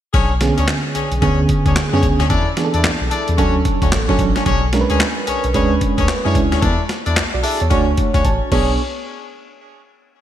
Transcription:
0.13 B1 C#4 D4 G#4 C#5, kick, closed hi-hat
0.41 D3 B3 C#4 G#4, snare, closed hi-hat
0.57 D2 C#4 D4 G#4 C#5, closed hi-hat
0.68 snare, clap, closed hi-hat
0.95 B1 C#4 D4 G#4 C#5, closed hi-hat
1.12 B1, closed hi-hat
1.22 D2 D3 B3 C#4 D4 G#4 C#5, kick, closed hi-hat
1.49 kick, closed hi-hat
1.66 D2 C#4 D4 G#4 C#5, kick, closed hi-hat
1.76 snare, clap, closed hi-hat
1.93 F#2 D3 B3 C#4 D4 G#4 C#5
2.03 C#2, kick, closed hi-hat
2.20 D2 C#4 D4 G#4 C#5, snare, closed hi-hat
2.30 E2 D4 E4 A4 D5, kick, closed hi-hat
2.57 E3 B3 D4 G#4, snare, closed hi-hat
2.65 A4
2.73 E2 D4 E4 A4 D5, closed hi-hat
2.84 B1, snare, clap, closed hi-hat
3.01 B1
3.11 D4 E4 A4 D5, closed hi-hat
3.28 E2, closed hi-hat
3.38 D2 F#3 C#4 D4 F#4 A4 C#5, kick, closed hi-hat
3.65 kick, closed hi-hat
3.82 D2 C#4 D4 F#4 C#5, kick, closed hi-hat
3.92 A1, snare, clap, closed hi-hat
4.08 F#3 C#4 D4 F#4 A4 C#5, kick
4.19 A1, kick, closed hi-hat
4.35 C#4 D4 F#4 C#5, snare, closed hi-hat
4.46 B1 C#4 D4 G#4 C#5, kick, closed hi-hat
4.73 G#3 C#4 D4 A#4, snare, closed hi-hat
4.81 B4
4.90 D2 C#4 D4 G#4 C#5, closed hi-hat
5.00 snare, clap, closed hi-hat
5.27 B1 C#4 D4 G#4 C#5, closed hi-hat
5.44 B1, closed hi-hat
5.54 D2 G#3 C#4 D4 G#4 B4 C#5, kick, closed hi-hat
5.81 kick, closed hi-hat
5.98 D2 C#4 D4 G#4 C#5, kick, closed hi-hat
6.08 snare, clap, closed hi-hat
6.25 F#2 G#3 C#4 D4 E4 G#4 C#5
6.35 C#2, kick, closed hi-hat
6.52 D2 C#4 D4 G#4 C#5, snare, closed hi-hat
6.62 E2 D4 E4 A4 D5, kick, closed hi-hat
6.89 snare, closed hi-hat
7.06 E2 D4 E4 A4 D5, closed hi-hat
7.16 B1, snare, clap, closed hi-hat
7.34 B1 F#4 D5
7.43 D4 E4 G#4 A4 D5 E5, open hi-hat
7.60 E2 C#5 A5, closed hi-hat
7.70 D2 A3 C#4 D4 F#4 C#5, kick, closed hi-hat
7.97 kick, closed hi-hat
8.14 D2 C#4 D4 F#4 C#5, kick, closed hi-hat
8.25 A1 C#5 A5, kick, closed hi-hat
8.51 B1 B3 C#4 D4 G#4 C#5, kick, crash

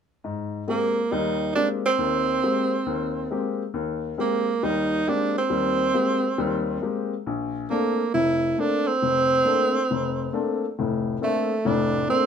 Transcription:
0.24 G#2
0.68 G#3 A#3 C4 G4
1.12 D#2 G3 D#4
1.55 G#3 A#3 C4 D4 G4
1.86 C4
1.99 D#2
2.43 G#3 A#3 C4 G4
2.86 D#2
3.31 G#3 A#3 C4 G4
3.74 D#2
4.18 G#3 A#3 C4 G4
4.63 D#2 G3 D#4
5.07 G#3 A#3 C4 D4 G4
5.38 C4
5.50 D#2 G3
5.94 G#3 A#3 C4 G4
6.38 D#2 G3
6.82 G#3 A#3 C4 G4
7.26 A#1
7.70 A3 A#3 C4 D4
8.14 F1 E4
8.58 A3 A#3 C4 D4
8.87 C4
9.02 F1
9.45 A3 A#3 C4 D4
9.91 F1
10.33 A3 A#3 C4 D4
10.79 F1 A2
11.21 A3 A#3 C4 D4
11.65 F1 A2 D4
12.09 A3 A#3 C4 D4

